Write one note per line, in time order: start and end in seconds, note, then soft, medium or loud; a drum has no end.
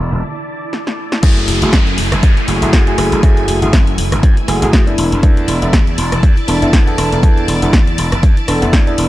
0.00 1.19 E4 medium
0.00 1.19 D5 medium
0.00 1.19 A5 medium
0.12 0.21 E1 medium
0.12 tambourine medium
0.12 high conga medium
0.73 snare medium
0.87 snare medium
1.12 snare medium
1.22 1.49 F#2 medium
1.22 1.59 A3 medium
1.22 4.94 A3 medium
1.22 1.59 E4 medium
1.22 9.09 E4 medium
1.22 1.59 F#4 medium
1.22 1.59 G#4 loud
1.22 4.94 G#5 medium
1.22 kick loud
1.22 closed hi-hat medium
1.22 crash loud
1.22 downlifter medium
1.37 closed hi-hat soft
1.48 1.60 F#1 medium
1.48 open hi-hat loud
1.62 1.75 F#1 medium
1.62 1.74 A3 medium
1.62 1.75 E4 medium
1.62 1.75 F#4 medium
1.62 1.75 G#4 medium
1.62 closed hi-hat medium
1.73 1.99 F#2 medium
1.73 kick loud
1.73 snare loud
1.73 closed hi-hat medium
1.87 closed hi-hat soft
1.98 2.10 F#1 loud
1.98 open hi-hat loud
2.12 2.21 F#1 medium
2.12 cross-stick medium
2.12 closed hi-hat medium
2.23 2.35 F#2 loud
2.23 kick loud
2.23 closed hi-hat medium
2.37 closed hi-hat soft
2.47 2.60 F#1 medium
2.47 2.60 A3 medium
2.47 2.60 E4 medium
2.47 2.60 F#4 medium
2.47 2.60 G#4 loud
2.47 open hi-hat loud
2.62 2.71 F#1 medium
2.62 2.84 A3 medium
2.62 2.84 E4 medium
2.62 2.84 F#4 medium
2.62 2.84 G#4 medium
2.62 closed hi-hat medium
2.73 kick loud
2.73 snare loud
2.73 closed hi-hat medium
2.87 3.20 A3 medium
2.87 3.20 E4 medium
2.87 3.21 F#4 medium
2.87 3.21 G#4 loud
2.87 closed hi-hat soft
2.98 3.10 F#1 loud
2.98 cross-stick medium
2.98 open hi-hat loud
3.12 3.21 F#1 medium
3.12 closed hi-hat medium
3.23 3.50 F#2 medium
3.23 3.59 A3 medium
3.23 3.59 E4 medium
3.23 3.59 F#4 medium
3.23 3.59 G#4 loud
3.23 kick loud
3.23 closed hi-hat medium
3.37 closed hi-hat soft
3.48 3.60 F#1 loud
3.48 open hi-hat loud
3.62 3.75 F#1 medium
3.62 3.74 A3 medium
3.62 3.75 E4 medium
3.62 3.75 F#4 medium
3.62 3.75 G#4 medium
3.62 closed hi-hat medium
3.73 3.99 F#2 medium
3.73 kick loud
3.73 snare loud
3.73 closed hi-hat medium
3.87 closed hi-hat soft
3.98 4.10 F#1 loud
3.98 open hi-hat loud
4.12 4.21 F#1 loud
4.12 cross-stick medium
4.12 closed hi-hat medium
4.23 4.35 F#2 loud
4.23 kick loud
4.23 closed hi-hat medium
4.37 muted slap bass stroke soft
4.37 closed hi-hat soft
4.48 4.60 F#1 medium
4.48 4.60 A3 medium
4.48 4.60 E4 medium
4.48 4.60 F#4 medium
4.48 4.60 G#4 loud
4.48 cross-stick medium
4.48 open hi-hat loud
4.62 4.71 F#1 medium
4.62 4.84 A3 medium
4.62 4.84 E4 medium
4.62 4.84 F#4 medium
4.62 4.84 G#4 loud
4.62 snare soft
4.62 closed hi-hat medium
4.73 kick loud
4.73 snare loud
4.73 closed hi-hat medium
4.87 5.20 B3 medium
4.87 5.20 D4 medium
4.87 5.20 E4 medium
4.87 5.21 A4 loud
4.87 closed hi-hat soft
4.98 5.10 E1 medium
4.98 9.09 D5 medium
4.98 9.09 A5 medium
4.98 open hi-hat loud
5.12 5.21 E1 medium
5.12 closed hi-hat medium
5.23 5.59 B3 medium
5.23 5.59 D4 medium
5.23 5.59 E4 medium
5.23 5.59 A4 loud
5.23 kick loud
5.23 closed hi-hat medium
5.37 closed hi-hat soft
5.48 5.60 E1 loud
5.48 open hi-hat loud
5.62 5.75 E1 medium
5.62 5.74 B3 medium
5.62 5.75 D4 medium
5.62 5.75 E4 medium
5.62 5.75 A4 medium
5.62 closed hi-hat medium
5.73 5.99 E2 medium
5.73 kick loud
5.73 snare loud
5.73 closed hi-hat medium
5.87 closed hi-hat soft
5.98 6.10 E1 loud
5.98 open hi-hat loud
6.12 6.21 E1 medium
6.12 cross-stick medium
6.12 closed hi-hat medium
6.23 6.35 E2 loud
6.23 kick loud
6.23 closed hi-hat medium
6.37 muted slap bass stroke soft
6.37 closed hi-hat soft
6.48 6.60 E1 medium
6.48 6.60 B3 medium
6.48 6.60 D4 medium
6.48 6.60 E4 medium
6.48 6.60 A4 loud
6.48 open hi-hat loud
6.62 6.71 E1 medium
6.62 6.84 B3 medium
6.62 6.84 D4 medium
6.62 6.84 E4 medium
6.62 6.84 A4 medium
6.62 closed hi-hat medium
6.73 6.94 E2 medium
6.73 kick loud
6.73 snare loud
6.73 closed hi-hat medium
6.87 7.20 B3 medium
6.87 7.20 D4 medium
6.87 7.21 E4 medium
6.87 7.21 A4 loud
6.87 closed hi-hat soft
6.98 7.10 E1 medium
6.98 cross-stick medium
6.98 open hi-hat loud
7.12 7.21 E1 medium
7.12 closed hi-hat medium
7.23 7.59 B3 medium
7.23 7.59 D4 medium
7.23 7.59 E4 medium
7.23 7.59 A4 loud
7.23 kick loud
7.23 closed hi-hat medium
7.37 closed hi-hat soft
7.48 7.60 E1 loud
7.48 open hi-hat loud
7.62 7.75 E1 medium
7.62 7.74 B3 medium
7.62 7.75 D4 medium
7.62 7.75 E4 medium
7.62 7.75 A4 medium
7.62 closed hi-hat medium
7.73 8.00 E2 medium
7.73 kick loud
7.73 snare loud
7.73 closed hi-hat medium
7.87 closed hi-hat soft
7.98 8.10 E1 medium
7.98 open hi-hat loud
8.12 8.21 E1 loud
8.12 cross-stick medium
8.12 closed hi-hat soft
8.23 8.35 E2 medium
8.23 kick loud
8.23 closed hi-hat medium
8.37 muted slap bass stroke soft
8.37 closed hi-hat soft
8.48 8.60 E1 medium
8.48 8.60 B3 loud
8.48 8.60 D4 medium
8.48 8.60 E4 medium
8.48 8.60 A4 loud
8.48 cross-stick medium
8.48 open hi-hat loud
8.62 8.71 E1 medium
8.62 8.84 B3 medium
8.62 8.84 D4 medium
8.62 8.84 E4 medium
8.62 8.84 A4 medium
8.62 snare soft
8.62 closed hi-hat soft
8.73 8.94 E2 medium
8.73 kick loud
8.73 snare loud
8.73 closed hi-hat medium
8.87 9.09 B3 medium
8.87 9.09 D4 medium
8.87 9.09 E4 medium
8.87 9.09 A4 loud
8.87 closed hi-hat soft
8.98 9.09 E1 medium
8.98 open hi-hat loud